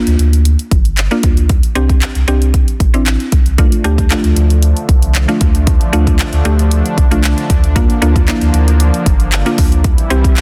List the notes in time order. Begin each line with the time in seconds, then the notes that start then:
Already playing: A#3 D4 F4
0.07 D2, closed hi-hat
0.19 D2, closed hi-hat
0.33 closed hi-hat
0.45 closed hi-hat
0.59 closed hi-hat
0.71 G1, kick, closed hi-hat
0.85 closed hi-hat
0.97 clap, closed hi-hat
1.11 A#3 D4 F4, closed hi-hat
1.23 D2, kick, closed hi-hat
1.37 closed hi-hat
1.49 kick, closed hi-hat
1.63 closed hi-hat
1.75 C2 C4 D4 G4, closed hi-hat
1.89 kick, closed hi-hat
2.02 clap, closed hi-hat
2.15 C2, closed hi-hat
2.28 C2 C4 D4 G4, closed hi-hat
2.42 closed hi-hat
2.54 kick, closed hi-hat
2.68 closed hi-hat
2.80 A1, kick, closed hi-hat
2.94 C4 D4 E4, closed hi-hat
3.06 clap, closed hi-hat
3.20 closed hi-hat
3.32 C2, kick, closed hi-hat
3.46 closed hi-hat
3.58 D3 F3 A3 D4 F4, kick, closed hi-hat
3.72 closed hi-hat
3.84 D2 A3 D4 G4, closed hi-hat
3.98 kick, closed hi-hat
4.10 A3 D4 F4, clap, closed hi-hat
4.24 D2, closed hi-hat
4.36 D2, closed hi-hat
4.50 closed hi-hat
4.63 closed hi-hat
4.77 closed hi-hat
4.89 C2, kick, closed hi-hat
5.02 closed hi-hat
5.15 clap, closed hi-hat
5.28 A3 D4 F4, closed hi-hat
5.41 D2, kick, closed hi-hat
5.55 closed hi-hat
5.67 kick, closed hi-hat
5.81 closed hi-hat
5.93 D2 A3 D4 F4, closed hi-hat
6.07 kick, closed hi-hat
6.19 clap, closed hi-hat
6.33 D2, closed hi-hat
6.45 D2 A3 D4 G4, closed hi-hat
6.59 closed hi-hat
6.71 closed hi-hat
6.86 closed hi-hat
6.98 C2, kick, closed hi-hat
7.11 A3 D4 F4, closed hi-hat
7.24 clap, closed hi-hat
7.38 closed hi-hat
7.50 D2, kick, closed hi-hat
7.64 closed hi-hat
7.76 F3 A#3 D4 F4, kick, closed hi-hat
7.90 closed hi-hat
8.02 D2 A#3 D4 F4, closed hi-hat
8.16 kick, closed hi-hat
8.28 A#3 D4 E4, clap, closed hi-hat
8.41 D2, closed hi-hat
8.54 D2, closed hi-hat
8.68 closed hi-hat
8.80 closed hi-hat
8.94 closed hi-hat
9.06 G1, kick, closed hi-hat
9.20 closed hi-hat
9.32 clap, closed hi-hat
9.46 A#3 D4 F4, closed hi-hat
9.58 D2, kick, open hi-hat
9.72 closed hi-hat
9.84 C3 E3 G3 E4, kick, closed hi-hat
9.98 closed hi-hat
10.10 C2 C4 E4 G4, closed hi-hat
10.24 kick, closed hi-hat
10.37 clap, closed hi-hat